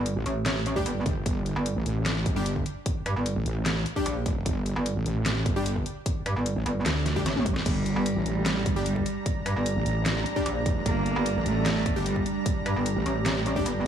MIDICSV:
0, 0, Header, 1, 7, 480
1, 0, Start_track
1, 0, Key_signature, -2, "minor"
1, 0, Tempo, 400000
1, 1512, Time_signature, 4, 2, 24, 8
1, 16646, End_track
2, 0, Start_track
2, 0, Title_t, "Analog synth pad"
2, 0, Program_c, 0, 89
2, 9192, Note_on_c, 0, 55, 83
2, 9192, Note_on_c, 0, 62, 80
2, 9192, Note_on_c, 0, 82, 93
2, 16646, Note_off_c, 0, 55, 0
2, 16646, Note_off_c, 0, 62, 0
2, 16646, Note_off_c, 0, 82, 0
2, 16646, End_track
3, 0, Start_track
3, 0, Title_t, "Supersaw synth"
3, 0, Program_c, 1, 81
3, 915, Note_on_c, 1, 55, 93
3, 915, Note_on_c, 1, 62, 89
3, 915, Note_on_c, 1, 67, 105
3, 1022, Note_off_c, 1, 55, 0
3, 1022, Note_off_c, 1, 62, 0
3, 1022, Note_off_c, 1, 67, 0
3, 2834, Note_on_c, 1, 67, 106
3, 2835, Note_on_c, 1, 55, 94
3, 2835, Note_on_c, 1, 62, 87
3, 2942, Note_off_c, 1, 55, 0
3, 2942, Note_off_c, 1, 62, 0
3, 2942, Note_off_c, 1, 67, 0
3, 4755, Note_on_c, 1, 55, 95
3, 4755, Note_on_c, 1, 62, 87
3, 4755, Note_on_c, 1, 67, 109
3, 4862, Note_off_c, 1, 55, 0
3, 4862, Note_off_c, 1, 62, 0
3, 4862, Note_off_c, 1, 67, 0
3, 6674, Note_on_c, 1, 55, 95
3, 6674, Note_on_c, 1, 62, 89
3, 6674, Note_on_c, 1, 67, 103
3, 6781, Note_off_c, 1, 55, 0
3, 6781, Note_off_c, 1, 62, 0
3, 6781, Note_off_c, 1, 67, 0
3, 8595, Note_on_c, 1, 55, 96
3, 8595, Note_on_c, 1, 62, 86
3, 8595, Note_on_c, 1, 67, 106
3, 8702, Note_off_c, 1, 55, 0
3, 8702, Note_off_c, 1, 62, 0
3, 8702, Note_off_c, 1, 67, 0
3, 10514, Note_on_c, 1, 55, 93
3, 10515, Note_on_c, 1, 62, 88
3, 10515, Note_on_c, 1, 67, 106
3, 10622, Note_off_c, 1, 55, 0
3, 10622, Note_off_c, 1, 62, 0
3, 10622, Note_off_c, 1, 67, 0
3, 12434, Note_on_c, 1, 55, 93
3, 12434, Note_on_c, 1, 62, 87
3, 12434, Note_on_c, 1, 67, 105
3, 12542, Note_off_c, 1, 55, 0
3, 12542, Note_off_c, 1, 62, 0
3, 12542, Note_off_c, 1, 67, 0
3, 14354, Note_on_c, 1, 55, 94
3, 14354, Note_on_c, 1, 62, 87
3, 14354, Note_on_c, 1, 67, 106
3, 14462, Note_off_c, 1, 55, 0
3, 14462, Note_off_c, 1, 62, 0
3, 14462, Note_off_c, 1, 67, 0
3, 16274, Note_on_c, 1, 55, 82
3, 16274, Note_on_c, 1, 62, 74
3, 16274, Note_on_c, 1, 67, 86
3, 16448, Note_off_c, 1, 55, 0
3, 16448, Note_off_c, 1, 62, 0
3, 16448, Note_off_c, 1, 67, 0
3, 16646, End_track
4, 0, Start_track
4, 0, Title_t, "Cello"
4, 0, Program_c, 2, 42
4, 9192, Note_on_c, 2, 55, 100
4, 9818, Note_off_c, 2, 55, 0
4, 9913, Note_on_c, 2, 55, 102
4, 10538, Note_off_c, 2, 55, 0
4, 10633, Note_on_c, 2, 55, 88
4, 11013, Note_off_c, 2, 55, 0
4, 13032, Note_on_c, 2, 58, 104
4, 13658, Note_off_c, 2, 58, 0
4, 13752, Note_on_c, 2, 57, 103
4, 14378, Note_off_c, 2, 57, 0
4, 14472, Note_on_c, 2, 55, 92
4, 14853, Note_off_c, 2, 55, 0
4, 16646, End_track
5, 0, Start_track
5, 0, Title_t, "Wobble bass"
5, 0, Program_c, 3, 39
5, 194, Note_on_c, 3, 33, 101
5, 293, Note_off_c, 3, 33, 0
5, 1272, Note_on_c, 3, 31, 97
5, 1493, Note_off_c, 3, 31, 0
5, 1512, Note_on_c, 3, 31, 94
5, 1854, Note_off_c, 3, 31, 0
5, 2114, Note_on_c, 3, 33, 100
5, 2213, Note_off_c, 3, 33, 0
5, 2231, Note_on_c, 3, 33, 99
5, 2693, Note_off_c, 3, 33, 0
5, 2711, Note_on_c, 3, 31, 94
5, 3173, Note_off_c, 3, 31, 0
5, 4034, Note_on_c, 3, 33, 99
5, 4133, Note_off_c, 3, 33, 0
5, 4152, Note_on_c, 3, 33, 100
5, 4613, Note_off_c, 3, 33, 0
5, 5111, Note_on_c, 3, 29, 94
5, 5214, Note_off_c, 3, 29, 0
5, 5234, Note_on_c, 3, 29, 99
5, 5333, Note_off_c, 3, 29, 0
5, 5351, Note_on_c, 3, 31, 99
5, 5694, Note_off_c, 3, 31, 0
5, 5953, Note_on_c, 3, 33, 101
5, 6053, Note_off_c, 3, 33, 0
5, 6071, Note_on_c, 3, 33, 100
5, 6533, Note_off_c, 3, 33, 0
5, 6551, Note_on_c, 3, 31, 98
5, 7013, Note_off_c, 3, 31, 0
5, 7874, Note_on_c, 3, 33, 100
5, 7973, Note_off_c, 3, 33, 0
5, 8232, Note_on_c, 3, 38, 94
5, 8693, Note_off_c, 3, 38, 0
5, 9192, Note_on_c, 3, 31, 99
5, 9535, Note_off_c, 3, 31, 0
5, 9794, Note_on_c, 3, 33, 99
5, 9893, Note_off_c, 3, 33, 0
5, 9912, Note_on_c, 3, 33, 100
5, 10373, Note_off_c, 3, 33, 0
5, 10392, Note_on_c, 3, 31, 97
5, 10853, Note_off_c, 3, 31, 0
5, 11714, Note_on_c, 3, 33, 101
5, 11813, Note_off_c, 3, 33, 0
5, 11831, Note_on_c, 3, 33, 100
5, 12293, Note_off_c, 3, 33, 0
5, 12791, Note_on_c, 3, 29, 97
5, 12894, Note_off_c, 3, 29, 0
5, 12914, Note_on_c, 3, 29, 99
5, 13013, Note_off_c, 3, 29, 0
5, 13031, Note_on_c, 3, 31, 96
5, 13374, Note_off_c, 3, 31, 0
5, 13634, Note_on_c, 3, 33, 99
5, 13733, Note_off_c, 3, 33, 0
5, 13752, Note_on_c, 3, 33, 101
5, 14213, Note_off_c, 3, 33, 0
5, 14231, Note_on_c, 3, 31, 99
5, 14693, Note_off_c, 3, 31, 0
5, 15554, Note_on_c, 3, 33, 104
5, 15653, Note_off_c, 3, 33, 0
5, 16646, End_track
6, 0, Start_track
6, 0, Title_t, "Wobble bass"
6, 0, Program_c, 4, 39
6, 0, Note_on_c, 4, 31, 96
6, 174, Note_off_c, 4, 31, 0
6, 311, Note_on_c, 4, 33, 94
6, 1013, Note_off_c, 4, 33, 0
6, 1032, Note_on_c, 4, 31, 95
6, 1253, Note_off_c, 4, 31, 0
6, 1874, Note_on_c, 4, 31, 95
6, 2094, Note_off_c, 4, 31, 0
6, 3672, Note_on_c, 4, 43, 99
6, 3774, Note_off_c, 4, 43, 0
6, 3794, Note_on_c, 4, 31, 100
6, 4015, Note_off_c, 4, 31, 0
6, 4872, Note_on_c, 4, 34, 100
6, 5093, Note_off_c, 4, 34, 0
6, 5714, Note_on_c, 4, 31, 98
6, 5935, Note_off_c, 4, 31, 0
6, 7512, Note_on_c, 4, 43, 98
6, 7615, Note_off_c, 4, 43, 0
6, 7634, Note_on_c, 4, 31, 98
6, 7854, Note_off_c, 4, 31, 0
6, 7992, Note_on_c, 4, 31, 97
6, 8213, Note_off_c, 4, 31, 0
6, 8712, Note_on_c, 4, 33, 96
6, 9054, Note_off_c, 4, 33, 0
6, 9554, Note_on_c, 4, 31, 97
6, 9775, Note_off_c, 4, 31, 0
6, 11351, Note_on_c, 4, 43, 96
6, 11454, Note_off_c, 4, 43, 0
6, 11474, Note_on_c, 4, 31, 97
6, 11694, Note_off_c, 4, 31, 0
6, 12552, Note_on_c, 4, 34, 96
6, 12773, Note_off_c, 4, 34, 0
6, 13394, Note_on_c, 4, 31, 95
6, 13615, Note_off_c, 4, 31, 0
6, 15191, Note_on_c, 4, 43, 100
6, 15294, Note_off_c, 4, 43, 0
6, 15314, Note_on_c, 4, 31, 100
6, 15534, Note_off_c, 4, 31, 0
6, 15671, Note_on_c, 4, 33, 99
6, 16373, Note_off_c, 4, 33, 0
6, 16391, Note_on_c, 4, 31, 97
6, 16612, Note_off_c, 4, 31, 0
6, 16646, End_track
7, 0, Start_track
7, 0, Title_t, "Drums"
7, 71, Note_on_c, 9, 42, 77
7, 191, Note_off_c, 9, 42, 0
7, 311, Note_on_c, 9, 42, 52
7, 431, Note_off_c, 9, 42, 0
7, 552, Note_on_c, 9, 38, 123
7, 552, Note_on_c, 9, 39, 89
7, 552, Note_on_c, 9, 42, 77
7, 672, Note_off_c, 9, 38, 0
7, 672, Note_off_c, 9, 39, 0
7, 672, Note_off_c, 9, 42, 0
7, 791, Note_on_c, 9, 42, 52
7, 911, Note_off_c, 9, 42, 0
7, 914, Note_on_c, 9, 36, 65
7, 1031, Note_on_c, 9, 42, 77
7, 1034, Note_off_c, 9, 36, 0
7, 1151, Note_off_c, 9, 42, 0
7, 1271, Note_on_c, 9, 42, 52
7, 1272, Note_on_c, 9, 36, 109
7, 1391, Note_off_c, 9, 42, 0
7, 1392, Note_off_c, 9, 36, 0
7, 1512, Note_on_c, 9, 36, 121
7, 1512, Note_on_c, 9, 42, 74
7, 1632, Note_off_c, 9, 36, 0
7, 1632, Note_off_c, 9, 42, 0
7, 1751, Note_on_c, 9, 42, 50
7, 1871, Note_off_c, 9, 42, 0
7, 1991, Note_on_c, 9, 42, 78
7, 2111, Note_off_c, 9, 42, 0
7, 2232, Note_on_c, 9, 42, 53
7, 2352, Note_off_c, 9, 42, 0
7, 2472, Note_on_c, 9, 38, 120
7, 2472, Note_on_c, 9, 39, 87
7, 2472, Note_on_c, 9, 42, 78
7, 2592, Note_off_c, 9, 38, 0
7, 2592, Note_off_c, 9, 39, 0
7, 2592, Note_off_c, 9, 42, 0
7, 2712, Note_on_c, 9, 36, 109
7, 2712, Note_on_c, 9, 42, 52
7, 2832, Note_off_c, 9, 36, 0
7, 2832, Note_off_c, 9, 42, 0
7, 2952, Note_on_c, 9, 42, 78
7, 3072, Note_off_c, 9, 42, 0
7, 3074, Note_on_c, 9, 36, 62
7, 3191, Note_on_c, 9, 42, 52
7, 3194, Note_off_c, 9, 36, 0
7, 3311, Note_off_c, 9, 42, 0
7, 3431, Note_on_c, 9, 42, 76
7, 3432, Note_on_c, 9, 36, 118
7, 3551, Note_off_c, 9, 42, 0
7, 3552, Note_off_c, 9, 36, 0
7, 3671, Note_on_c, 9, 42, 52
7, 3791, Note_off_c, 9, 42, 0
7, 3911, Note_on_c, 9, 42, 82
7, 4031, Note_off_c, 9, 42, 0
7, 4152, Note_on_c, 9, 42, 53
7, 4272, Note_off_c, 9, 42, 0
7, 4391, Note_on_c, 9, 38, 115
7, 4391, Note_on_c, 9, 39, 85
7, 4391, Note_on_c, 9, 42, 80
7, 4511, Note_off_c, 9, 38, 0
7, 4511, Note_off_c, 9, 39, 0
7, 4511, Note_off_c, 9, 42, 0
7, 4631, Note_on_c, 9, 42, 53
7, 4751, Note_off_c, 9, 42, 0
7, 4754, Note_on_c, 9, 36, 59
7, 4871, Note_on_c, 9, 42, 81
7, 4874, Note_off_c, 9, 36, 0
7, 4991, Note_off_c, 9, 42, 0
7, 5111, Note_on_c, 9, 36, 105
7, 5111, Note_on_c, 9, 42, 53
7, 5231, Note_off_c, 9, 36, 0
7, 5231, Note_off_c, 9, 42, 0
7, 5351, Note_on_c, 9, 36, 114
7, 5351, Note_on_c, 9, 42, 82
7, 5471, Note_off_c, 9, 36, 0
7, 5471, Note_off_c, 9, 42, 0
7, 5591, Note_on_c, 9, 42, 54
7, 5711, Note_off_c, 9, 42, 0
7, 5831, Note_on_c, 9, 42, 84
7, 5951, Note_off_c, 9, 42, 0
7, 6071, Note_on_c, 9, 42, 55
7, 6191, Note_off_c, 9, 42, 0
7, 6311, Note_on_c, 9, 38, 116
7, 6311, Note_on_c, 9, 39, 90
7, 6311, Note_on_c, 9, 42, 82
7, 6431, Note_off_c, 9, 38, 0
7, 6431, Note_off_c, 9, 39, 0
7, 6431, Note_off_c, 9, 42, 0
7, 6551, Note_on_c, 9, 36, 103
7, 6551, Note_on_c, 9, 42, 55
7, 6671, Note_off_c, 9, 36, 0
7, 6671, Note_off_c, 9, 42, 0
7, 6791, Note_on_c, 9, 42, 85
7, 6911, Note_off_c, 9, 42, 0
7, 6914, Note_on_c, 9, 36, 60
7, 7032, Note_on_c, 9, 42, 55
7, 7034, Note_off_c, 9, 36, 0
7, 7152, Note_off_c, 9, 42, 0
7, 7271, Note_on_c, 9, 36, 119
7, 7272, Note_on_c, 9, 42, 84
7, 7391, Note_off_c, 9, 36, 0
7, 7392, Note_off_c, 9, 42, 0
7, 7512, Note_on_c, 9, 42, 57
7, 7632, Note_off_c, 9, 42, 0
7, 7752, Note_on_c, 9, 42, 86
7, 7872, Note_off_c, 9, 42, 0
7, 7992, Note_on_c, 9, 42, 57
7, 8112, Note_off_c, 9, 42, 0
7, 8232, Note_on_c, 9, 38, 118
7, 8232, Note_on_c, 9, 39, 94
7, 8232, Note_on_c, 9, 42, 82
7, 8352, Note_off_c, 9, 38, 0
7, 8352, Note_off_c, 9, 39, 0
7, 8352, Note_off_c, 9, 42, 0
7, 8472, Note_on_c, 9, 38, 64
7, 8472, Note_on_c, 9, 42, 58
7, 8592, Note_off_c, 9, 38, 0
7, 8592, Note_off_c, 9, 42, 0
7, 8594, Note_on_c, 9, 36, 59
7, 8711, Note_on_c, 9, 38, 79
7, 8711, Note_on_c, 9, 42, 85
7, 8714, Note_off_c, 9, 36, 0
7, 8831, Note_off_c, 9, 38, 0
7, 8831, Note_off_c, 9, 42, 0
7, 8834, Note_on_c, 9, 47, 74
7, 8952, Note_on_c, 9, 36, 104
7, 8952, Note_on_c, 9, 42, 58
7, 8954, Note_off_c, 9, 47, 0
7, 9072, Note_off_c, 9, 36, 0
7, 9072, Note_off_c, 9, 42, 0
7, 9074, Note_on_c, 9, 38, 90
7, 9192, Note_on_c, 9, 36, 120
7, 9192, Note_on_c, 9, 42, 83
7, 9192, Note_on_c, 9, 49, 79
7, 9194, Note_off_c, 9, 38, 0
7, 9312, Note_off_c, 9, 36, 0
7, 9312, Note_off_c, 9, 42, 0
7, 9312, Note_off_c, 9, 49, 0
7, 9432, Note_on_c, 9, 42, 54
7, 9552, Note_off_c, 9, 42, 0
7, 9671, Note_on_c, 9, 42, 86
7, 9791, Note_off_c, 9, 42, 0
7, 9911, Note_on_c, 9, 42, 56
7, 10031, Note_off_c, 9, 42, 0
7, 10152, Note_on_c, 9, 38, 122
7, 10152, Note_on_c, 9, 39, 94
7, 10152, Note_on_c, 9, 42, 85
7, 10272, Note_off_c, 9, 38, 0
7, 10272, Note_off_c, 9, 39, 0
7, 10272, Note_off_c, 9, 42, 0
7, 10392, Note_on_c, 9, 36, 111
7, 10392, Note_on_c, 9, 42, 57
7, 10512, Note_off_c, 9, 36, 0
7, 10512, Note_off_c, 9, 42, 0
7, 10631, Note_on_c, 9, 42, 87
7, 10751, Note_off_c, 9, 42, 0
7, 10754, Note_on_c, 9, 36, 64
7, 10872, Note_on_c, 9, 42, 59
7, 10874, Note_off_c, 9, 36, 0
7, 10992, Note_off_c, 9, 42, 0
7, 11111, Note_on_c, 9, 36, 123
7, 11112, Note_on_c, 9, 42, 83
7, 11231, Note_off_c, 9, 36, 0
7, 11232, Note_off_c, 9, 42, 0
7, 11352, Note_on_c, 9, 42, 53
7, 11472, Note_off_c, 9, 42, 0
7, 11592, Note_on_c, 9, 42, 85
7, 11712, Note_off_c, 9, 42, 0
7, 11832, Note_on_c, 9, 42, 54
7, 11952, Note_off_c, 9, 42, 0
7, 12072, Note_on_c, 9, 38, 126
7, 12072, Note_on_c, 9, 39, 95
7, 12072, Note_on_c, 9, 42, 81
7, 12192, Note_off_c, 9, 38, 0
7, 12192, Note_off_c, 9, 39, 0
7, 12192, Note_off_c, 9, 42, 0
7, 12312, Note_on_c, 9, 42, 53
7, 12432, Note_off_c, 9, 42, 0
7, 12434, Note_on_c, 9, 36, 65
7, 12552, Note_on_c, 9, 42, 85
7, 12554, Note_off_c, 9, 36, 0
7, 12672, Note_off_c, 9, 42, 0
7, 12791, Note_on_c, 9, 36, 114
7, 12791, Note_on_c, 9, 42, 55
7, 12911, Note_off_c, 9, 36, 0
7, 12911, Note_off_c, 9, 42, 0
7, 13031, Note_on_c, 9, 36, 124
7, 13031, Note_on_c, 9, 42, 81
7, 13151, Note_off_c, 9, 36, 0
7, 13151, Note_off_c, 9, 42, 0
7, 13271, Note_on_c, 9, 42, 52
7, 13391, Note_off_c, 9, 42, 0
7, 13512, Note_on_c, 9, 42, 80
7, 13632, Note_off_c, 9, 42, 0
7, 13751, Note_on_c, 9, 42, 52
7, 13871, Note_off_c, 9, 42, 0
7, 13991, Note_on_c, 9, 38, 127
7, 13991, Note_on_c, 9, 39, 97
7, 13991, Note_on_c, 9, 42, 80
7, 14111, Note_off_c, 9, 38, 0
7, 14111, Note_off_c, 9, 39, 0
7, 14111, Note_off_c, 9, 42, 0
7, 14231, Note_on_c, 9, 36, 118
7, 14232, Note_on_c, 9, 42, 51
7, 14351, Note_off_c, 9, 36, 0
7, 14352, Note_off_c, 9, 42, 0
7, 14471, Note_on_c, 9, 42, 80
7, 14591, Note_off_c, 9, 42, 0
7, 14594, Note_on_c, 9, 36, 67
7, 14712, Note_on_c, 9, 42, 53
7, 14714, Note_off_c, 9, 36, 0
7, 14832, Note_off_c, 9, 42, 0
7, 14951, Note_on_c, 9, 36, 126
7, 14951, Note_on_c, 9, 42, 77
7, 15071, Note_off_c, 9, 36, 0
7, 15071, Note_off_c, 9, 42, 0
7, 15191, Note_on_c, 9, 42, 50
7, 15311, Note_off_c, 9, 42, 0
7, 15431, Note_on_c, 9, 42, 79
7, 15551, Note_off_c, 9, 42, 0
7, 15671, Note_on_c, 9, 42, 50
7, 15791, Note_off_c, 9, 42, 0
7, 15912, Note_on_c, 9, 38, 124
7, 15912, Note_on_c, 9, 39, 90
7, 15912, Note_on_c, 9, 42, 76
7, 16032, Note_off_c, 9, 38, 0
7, 16032, Note_off_c, 9, 39, 0
7, 16032, Note_off_c, 9, 42, 0
7, 16152, Note_on_c, 9, 42, 51
7, 16272, Note_off_c, 9, 42, 0
7, 16273, Note_on_c, 9, 36, 65
7, 16392, Note_on_c, 9, 42, 78
7, 16393, Note_off_c, 9, 36, 0
7, 16512, Note_off_c, 9, 42, 0
7, 16646, End_track
0, 0, End_of_file